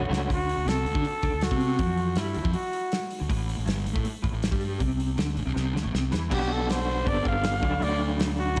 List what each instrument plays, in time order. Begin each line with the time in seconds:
0.08 fingered electric bass C#2, clean electric guitar D3 A3 C#4 F#4
0.13 snare
0.28 fingered electric bass D2, clean electric guitar D3, kick, open hi-hat
0.34 trumpet F#4
0.49 open hi-hat
0.57 fingered electric bass D2, clean electric guitar D3
0.65 fingered electric bass C2, clean electric guitar C3, trumpet A4, snare, open hi-hat
0.85 fingered electric bass D2, clean electric guitar D3, open hi-hat
0.95 fingered electric bass D3, clean electric guitar D4, kick
1.04 muted clean electric guitar stroke, muted fingered electric bass stroke, open hi-hat
1.23 fingered electric bass D2, clean electric guitar D3, kick, open hi-hat
1.33 fingered electric bass D2, clean electric guitar D3
1.41 trumpet F#4, snare, open hi-hat
1.51 fingered electric bass C3, clean electric guitar C4, kick
1.61 open hi-hat
1.79 fingered electric bass F2, clean electric guitar F3, kick, open hi-hat
1.97 open hi-hat
2.16 fingered electric bass G2, clean electric guitar G3, trumpet E4, snare, open hi-hat
2.35 fingered electric bass D2, clean electric guitar D3, open hi-hat
2.44 fingered electric bass F2, clean electric guitar F3, kick
2.53 trumpet F#4, open hi-hat
2.73 open hi-hat
2.92 snare, open hi-hat
3.11 open hi-hat
3.20 fingered electric bass D2, clean electric guitar D3
3.29 fingered electric bass A1, clean electric guitar A2, kick, open hi-hat
3.49 open hi-hat
3.57 fingered electric bass A1, clean electric guitar A2
3.66 fingered electric bass G1, clean electric guitar G2, snare, open hi-hat
3.85 fingered electric bass A1, clean electric guitar A2, open hi-hat
3.93 fingered electric bass A2, clean electric guitar A3, kick
4.03 muted clean electric guitar stroke, muted fingered electric bass stroke, open hi-hat
4.22 fingered electric bass A1, clean electric guitar A2, kick, open hi-hat
4.33 fingered electric bass A1, clean electric guitar A2
4.43 snare, open hi-hat
4.51 fingered electric bass G2, clean electric guitar G3, kick
4.61 open hi-hat
4.79 fingered electric bass C2, clean electric guitar C3, kick, open hi-hat
5.00 open hi-hat
5.18 fingered electric bass D2, clean electric guitar D3, snare, open hi-hat
5.37 fingered electric bass A1, clean electric guitar A2, open hi-hat
5.46 fingered electric bass C2, clean electric guitar C3
5.54 fingered electric bass C2, clean electric guitar C3, snare
5.73 fingered electric bass D2, clean electric guitar D3, snare
5.83 fingered electric bass A1, clean electric guitar A2
5.92 fingered electric bass C2, clean electric guitar C3, snare
6.12 fingered electric bass E2, clean electric guitar E3, snare
6.30 fingered electric bass B1, clean electric guitar B2 F#3 B3 D4 F#4, trumpet G4, kick, crash
6.53 trumpet A4
6.69 trumpet C5, snare, open hi-hat
7.05 fingered electric bass G1, clean electric guitar G3 B3 D4 A4, trumpet D5, kick, open hi-hat
7.25 fingered electric bass G1, trumpet F5, kick
7.43 snare, open hi-hat
7.63 fingered electric bass D2, clean electric guitar D3 F#3 A3 D4 E4, kick
7.82 fingered electric bass D2, trumpet D5, open hi-hat
8.20 snare, open hi-hat
8.40 trumpet F#4
8.56 clean electric guitar A2, open hi-hat